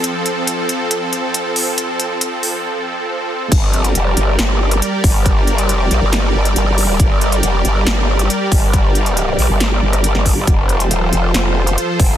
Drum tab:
CC |----------------|----------------|x---------------|----------------|
HH |x-x-x-x-x-x-x-o-|x-x-x-o---------|x-xxx-x-x--xx-o-|x-xxx-x-x--xx-o-|
SD |----------------|----------------|--------or------|--------o-------|
BD |----------------|----------------|o-------------o-|o---------------|

CC |----------------|----------------|----------------|
HH |x-xxx-x-x--xx-o-|x-xxx-o-x--xx-o-|x-xxx-x-x--xx-o-|
SD |--------or------|--------o--r-o--|--------or------|
BD |o-------------o-|o-------------o-|o-------------o-|